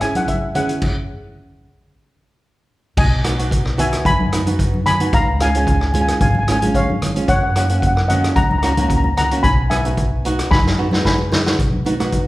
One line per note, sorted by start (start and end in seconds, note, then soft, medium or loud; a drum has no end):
0.01 0.34 C#4 medium
0.01 0.34 E4 medium
0.01 0.34 G#4 medium
0.01 0.16 G#5 medium
0.01 cross-stick medium
0.01 closed hi-hat medium
0.15 0.29 F#5 medium
0.15 closed hi-hat medium
0.15 high conga medium
0.28 0.56 E5 medium
0.28 kick medium
0.28 closed hi-hat medium
0.55 0.82 C#4 medium
0.55 0.82 E4 medium
0.55 0.82 G#4 medium
0.55 2.13 F#5 medium
0.55 closed hi-hat medium
0.55 low conga medium
0.69 closed hi-hat medium
0.82 kick medium
0.82 crash medium
2.97 3.94 B1 loud
2.97 3.74 D#5 medium
2.97 3.78 G#5 medium
2.97 kick loud
2.97 crash loud
3.24 3.33 B3 medium
3.24 3.33 D#4 medium
3.24 3.33 F#4 medium
3.24 cross-stick medium
3.24 closed hi-hat medium
3.38 3.63 B3 medium
3.38 3.63 D#4 medium
3.38 3.63 F#4 medium
3.38 closed hi-hat medium
3.51 kick medium
3.51 closed hi-hat medium
3.65 cross-stick medium
3.78 4.11 B3 medium
3.78 4.11 D#4 medium
3.78 4.11 F#4 medium
3.78 4.04 E5 medium
3.78 4.05 G#5 medium
3.78 closed hi-hat medium
3.78 low conga medium
3.93 cross-stick medium
3.93 closed hi-hat medium
4.05 5.01 F#2 medium
4.05 4.82 G#5 medium
4.05 4.82 B5 loud
4.05 kick loud
4.05 closed hi-hat medium
4.05 high conga medium
4.05 low conga medium
4.20 high conga medium
4.32 4.41 B3 medium
4.32 4.41 D#4 medium
4.32 4.41 F#4 medium
4.32 cross-stick medium
4.32 closed hi-hat medium
4.46 4.78 B3 medium
4.46 4.79 D#4 medium
4.46 4.79 F#4 medium
4.46 closed hi-hat medium
4.46 high conga medium
4.59 kick medium
4.59 closed hi-hat medium
4.74 high conga medium
4.86 4.98 G#5 medium
4.86 4.98 B5 loud
4.86 cross-stick medium
4.86 closed hi-hat medium
4.86 low conga medium
5.00 5.13 B3 medium
5.00 5.13 D#4 medium
5.00 5.13 F#4 medium
5.00 closed hi-hat medium
5.13 6.09 C#2 loud
5.13 5.39 F5 medium
5.13 5.41 A#5 loud
5.13 kick loud
5.13 closed hi-hat medium
5.40 5.49 G#3 medium
5.40 5.49 C#4 medium
5.40 5.49 F4 medium
5.40 5.48 F5 medium
5.40 5.49 G#5 loud
5.40 cross-stick medium
5.40 closed hi-hat medium
5.54 5.78 G#3 medium
5.54 5.78 C#4 medium
5.54 5.79 F4 medium
5.54 5.63 G#5 medium
5.54 closed hi-hat medium
5.64 5.70 G#5 medium
5.64 kick medium
5.64 closed hi-hat medium
5.72 5.79 G#5 medium
5.81 cross-stick medium
5.87 5.92 G#5 medium
5.93 6.26 G#3 medium
5.93 6.27 C#4 medium
5.93 6.27 F4 medium
5.93 6.00 G#5 medium
5.93 closed hi-hat medium
5.93 low conga medium
6.02 6.08 G#5 medium
6.08 6.16 G#5 medium
6.08 cross-stick medium
6.08 closed hi-hat medium
6.21 7.17 G#1 medium
6.21 6.28 F5 medium
6.21 6.29 G#5 medium
6.21 kick loud
6.21 closed hi-hat medium
6.21 high conga medium
6.21 low conga medium
6.30 6.37 G#5 medium
6.35 6.42 G#5 medium
6.35 high conga medium
6.43 6.51 G#5 medium
6.48 6.56 G#3 medium
6.48 6.56 C#4 medium
6.48 6.56 F4 medium
6.48 cross-stick medium
6.48 closed hi-hat medium
6.52 6.58 G#5 medium
6.59 6.94 G#3 medium
6.59 6.94 C#4 medium
6.59 6.94 F4 medium
6.59 6.67 G#5 medium
6.59 closed hi-hat medium
6.59 high conga medium
6.75 7.13 C#5 medium
6.75 7.13 F5 medium
6.75 kick medium
6.75 closed hi-hat medium
6.90 high conga medium
7.02 cross-stick medium
7.02 closed hi-hat medium
7.02 low conga medium
7.16 7.28 G#3 medium
7.16 7.29 C#4 medium
7.16 7.29 F4 medium
7.16 closed hi-hat medium
7.28 8.24 F#2 loud
7.28 7.35 C#5 medium
7.28 7.34 F#5 medium
7.28 kick loud
7.28 closed hi-hat medium
7.36 7.42 F#5 medium
7.43 7.48 F#5 medium
7.50 7.56 F#5 medium
7.55 7.64 A#3 medium
7.55 7.64 C#4 medium
7.55 7.64 F#4 medium
7.55 7.63 F#5 medium
7.55 cross-stick medium
7.55 closed hi-hat medium
7.69 7.93 A#3 medium
7.69 7.94 C#4 medium
7.69 7.94 F#4 medium
7.69 7.79 F#5 medium
7.69 closed hi-hat medium
7.80 7.86 F#5 medium
7.80 kick medium
7.80 closed hi-hat medium
7.87 7.95 F#5 medium
7.96 8.03 F#5 medium
7.96 cross-stick medium
8.08 8.42 A#3 medium
8.08 8.42 C#4 medium
8.08 8.42 F#4 medium
8.08 8.33 D#5 medium
8.08 8.35 F#5 medium
8.08 closed hi-hat medium
8.08 low conga medium
8.24 cross-stick medium
8.24 closed hi-hat medium
8.36 9.32 C#2 medium
8.36 8.43 F#5 medium
8.36 8.43 A#5 medium
8.36 kick loud
8.36 closed hi-hat medium
8.36 high conga medium
8.36 low conga medium
8.44 8.51 A#5 medium
8.51 8.57 A#5 medium
8.51 high conga medium
8.58 8.64 A#5 medium
8.63 8.71 A#3 medium
8.63 8.72 C#4 medium
8.63 8.71 F#4 medium
8.63 8.72 A#5 medium
8.63 cross-stick medium
8.63 closed hi-hat medium
8.73 9.09 A#3 medium
8.73 8.81 A#5 medium
8.73 closed hi-hat medium
8.77 9.09 C#4 medium
8.77 9.09 F#4 medium
8.77 high conga medium
8.82 8.87 A#5 medium
8.89 8.96 A#5 medium
8.89 kick medium
8.89 closed hi-hat medium
8.97 9.03 A#5 medium
9.04 9.11 A#5 medium
9.04 high conga medium
9.17 9.42 F#5 medium
9.17 9.45 A#5 medium
9.17 cross-stick medium
9.17 closed hi-hat medium
9.17 low conga medium
9.31 9.44 A#3 medium
9.31 9.44 C#4 medium
9.31 9.44 F#4 medium
9.31 closed hi-hat medium
9.43 10.40 B1 loud
9.43 9.68 G#5 medium
9.43 9.71 B5 loud
9.43 kick loud
9.43 closed hi-hat medium
9.43 low conga medium
9.70 9.79 B3 medium
9.70 9.79 D#4 medium
9.70 9.79 F#4 medium
9.70 10.47 E5 medium
9.70 10.47 G#5 medium
9.70 cross-stick medium
9.70 closed hi-hat medium
9.70 high conga medium
9.85 10.09 B3 medium
9.85 10.09 D#4 medium
9.85 10.09 F#4 medium
9.85 closed hi-hat medium
9.97 kick medium
9.97 closed hi-hat medium
10.25 10.57 B3 medium
10.25 10.57 D#4 medium
10.25 10.57 F#4 medium
10.25 closed hi-hat medium
10.39 cross-stick medium
10.39 closed hi-hat medium
10.51 11.47 F#2 medium
10.51 11.01 G#5 medium
10.51 11.04 B5 medium
10.51 kick loud
10.51 snare medium
10.51 high conga medium
10.64 snare medium
10.64 high conga medium
10.78 10.87 B3 medium
10.78 10.87 D#4 medium
10.78 10.87 F#4 medium
10.91 11.24 B3 medium
10.91 11.24 D#4 medium
10.91 11.24 F#4 medium
10.91 snare medium
10.91 high conga medium
11.05 11.44 G#5 medium
11.05 11.43 B5 medium
11.05 kick medium
11.05 snare medium
11.18 high conga medium
11.32 snare loud
11.32 low conga medium
11.46 11.59 B3 medium
11.46 11.59 D#4 medium
11.46 11.59 F#4 medium
11.46 snare medium
11.59 12.27 B1 medium
11.59 kick loud
11.59 closed hi-hat medium
11.73 high conga medium
11.85 11.94 B3 medium
11.85 11.94 D#4 medium
11.85 11.94 F#4 medium
11.85 closed hi-hat medium
11.85 high conga medium
12.00 12.24 B3 medium
12.00 12.24 D#4 medium
12.00 12.24 F#4 medium
12.00 cross-stick medium
12.00 closed hi-hat medium
12.12 kick medium
12.12 closed hi-hat medium